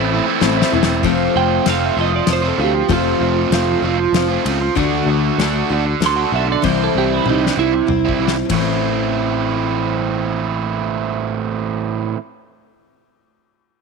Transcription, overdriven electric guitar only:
0.00 0.26 A2 loud
0.00 0.11 E3 medium
0.00 0.12 A3 medium
0.00 0.13 C4 medium
0.00 0.13 E4 medium
0.12 0.57 E3 medium
0.12 0.28 A3 medium
0.12 0.27 C4 medium
0.12 0.26 E4 medium
0.27 0.59 A3 medium
0.27 0.58 C4 medium
0.27 0.56 E4 medium
0.57 0.71 A3 medium
0.57 0.72 C4 medium
0.57 0.73 E4 medium
0.72 1.01 E3 medium
0.72 1.01 A3 medium
0.72 1.02 C4 medium
0.72 1.02 E4 medium
1.04 1.35 F3 medium
1.04 1.37 A3 medium
1.04 1.37 C4 medium
1.04 1.38 F4 medium
1.35 1.66 F3 medium
1.35 1.67 A3 medium
1.35 1.68 C4 medium
1.35 1.68 F4 medium
1.66 1.95 F3 medium
1.66 1.97 A3 medium
1.66 1.97 C4 loud
1.66 1.98 F4 medium
1.96 2.43 F3 medium
1.96 2.13 A3 medium
1.96 2.11 C4 medium
1.96 2.11 F4 medium
2.12 muted overdriven electric guitar stroke soft
2.42 2.58 A3 medium
2.42 2.58 C4 medium
2.42 2.59 F4 medium
2.58 2.89 F3 medium
2.58 2.74 A3 medium
2.58 2.74 C4 medium
2.58 2.73 F4 medium
2.75 muted overdriven electric guitar stroke soft
2.90 3.19 F3 medium
2.90 3.21 A3 medium
2.90 3.21 C4 medium
2.90 3.22 F4 medium
3.20 3.50 F3 medium
3.20 3.52 A3 medium
3.20 3.53 C4 medium
3.20 3.53 F4 medium
3.52 3.81 F3 medium
3.52 3.82 A3 loud
3.52 3.83 C4 medium
3.52 3.84 F4 medium
3.82 4.29 F3 medium
3.82 3.99 A3 medium
3.82 3.98 C4 medium
3.82 3.98 F4 medium
3.99 muted overdriven electric guitar stroke soft
4.28 4.44 A3 medium
4.28 4.44 C4 medium
4.28 4.45 F4 medium
4.44 4.74 F3 medium
4.44 4.60 A3 medium
4.44 4.60 C4 medium
4.44 4.60 F4 medium
4.61 muted overdriven electric guitar stroke soft
4.76 5.06 D3 medium
4.76 5.07 A3 medium
4.76 5.08 D4 medium
4.76 5.09 F#4 medium
5.07 5.38 D3 medium
5.07 5.38 A3 medium
5.07 5.39 D4 medium
5.07 5.39 F#4 medium
5.39 5.69 D3 medium
5.39 5.70 A3 medium
5.39 5.70 D4 medium
5.39 5.72 F#4 medium
5.70 6.17 D3 medium
5.70 5.85 A3 medium
5.70 5.85 D4 medium
5.70 5.84 F#4 medium
5.85 muted overdriven electric guitar stroke medium
6.16 6.33 A3 medium
6.16 6.34 D4 medium
6.16 6.33 F#4 medium
6.32 6.61 D3 medium
6.32 6.48 A3 medium
6.32 6.47 D4 medium
6.32 6.47 F#4 medium
6.48 muted overdriven electric guitar stroke soft
6.65 7.26 C3 medium
6.65 6.94 E3 medium
6.65 6.96 G3 medium
6.65 6.96 C4 medium
6.65 6.97 E4 medium
6.96 7.28 E3 medium
6.96 7.27 G3 medium
6.96 7.28 C4 medium
6.96 7.29 E4 medium
7.28 7.89 C3 medium
7.28 7.57 E3 medium
7.28 7.58 G3 medium
7.28 7.58 C4 medium
7.28 7.59 E4 medium
7.58 7.74 E3 medium
7.58 7.74 G3 medium
7.58 7.73 C4 medium
7.58 7.73 E4 medium
7.74 muted overdriven electric guitar stroke soft
8.06 8.20 G3 soft
8.06 8.20 C4 medium
8.06 8.21 E4 medium
8.19 8.36 E3 medium
8.19 8.36 G3 medium
8.19 8.36 C4 medium
8.19 8.36 E4 medium
8.37 muted overdriven electric guitar stroke soft
8.51 12.14 A2 medium
8.51 12.16 E3 medium
8.51 12.16 A3 medium
8.51 12.17 C4 medium
8.55 12.18 E4 medium

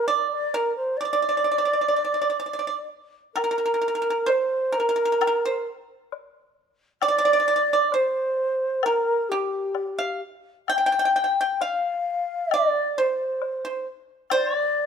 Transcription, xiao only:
0.07 0.30 D5 medium
0.32 0.55 D5 medium
0.54 0.75 A#4 medium
0.75 0.98 C5 medium
0.96 2.86 D5 medium
3.34 4.30 A#4 medium
4.29 4.78 C5 medium
4.77 5.67 A#4 medium
7.02 7.87 D5 loud
7.93 8.84 C5 medium
8.83 9.30 A#4 medium
9.29 10.21 G4 medium
10.68 11.63 G5 loud
11.61 12.55 F5 medium
12.53 12.99 D5 medium
12.97 13.86 C5 medium
14.31 14.86 D5 loud

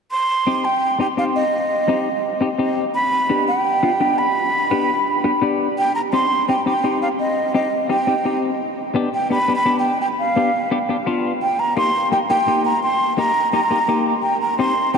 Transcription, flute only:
0.11 0.66 C6 loud
0.65 1.00 G5 medium
1.01 1.07 G5 medium
1.18 1.24 F5 medium
1.36 2.38 D#5 medium
2.95 3.44 B5 loud
3.48 4.20 G5 medium
4.18 5.42 B5 medium
5.78 5.95 G5 medium
5.95 6.01 A#5 medium
6.13 6.46 C6 loud
6.49 6.65 G5 medium
6.66 6.99 G5 medium
7.02 7.08 F5 medium
7.20 7.52 D#5 medium
7.55 7.88 D#5 medium
7.90 8.39 G5 medium
9.14 9.30 G5 medium
9.31 9.53 B5 medium
9.55 9.77 B5 medium
9.79 10.00 G5 medium
10.01 10.07 G5 medium
10.19 10.68 F5 medium
11.43 11.61 G5 medium
11.59 11.77 A#5 medium
11.78 12.10 C6 medium
12.12 12.18 G5 medium
12.30 12.63 G5 medium
12.65 12.82 A#5 medium
12.83 13.16 C6 loud
13.18 13.51 A#5 medium
13.53 14.02 A#5 medium
14.23 14.40 G5 medium
14.41 14.58 A#5 medium
14.59 14.92 C6 medium
14.94 14.98 G5 medium

